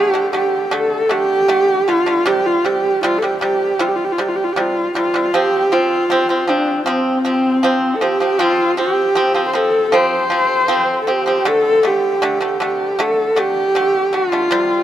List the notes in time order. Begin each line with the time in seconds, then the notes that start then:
Already playing: D3 A3 G4
0.14 D3 A3
0.33 D3 A3 G4
0.71 D3 A3 A4
1.09 D3 A3 G4
1.48 D3 A3
1.88 D3 A3 F4
2.06 D3 A3
2.26 C3 G3 G4
2.46 F4
2.65 C3 G3 G4
3.03 C3 G3 F4
3.18 C3 A4
3.23 G3 G4
3.41 C3 G3 G4
3.79 C3 G3 F4
3.89 G4
3.96 F4
4.05 G4
4.12 F4
4.18 C3 G3 G4
4.29 F4
4.36 G4
4.44 F4
4.53 C3 G4
4.57 G3 F4
4.95 C3 G3 F4
5.14 C3 G3
5.34 F3 C4 G4
5.72 F3 C4 F4
6.10 F3 C4
6.29 F3 C4
6.47 F3 C4 D4
6.86 F3 C4
7.25 F3 C4
7.63 F3 C4
7.95 A4
8.01 F3 C4 G4
8.20 F3 C4
8.39 F3 C4 F4
8.77 F3 C4 G4
9.15 F3 C4
9.34 F3 C4
9.48 C5
9.53 F3 C4 A4
9.92 F3 C4 C5
10.30 F3 C4
10.68 F3 C4
11.02 A4
11.07 F3 C4 G4
11.26 F3 C4
11.45 D3 A3 A4
11.83 D3 A3
11.87 G4
12.22 D3 A3
12.41 D3 A3
12.60 D3 A3 G4
12.99 D3 A3 A4
13.36 D3 A3 G4
13.75 D3 A3
14.13 D3 A3 F4
14.32 D3 A3
14.51 C3 G3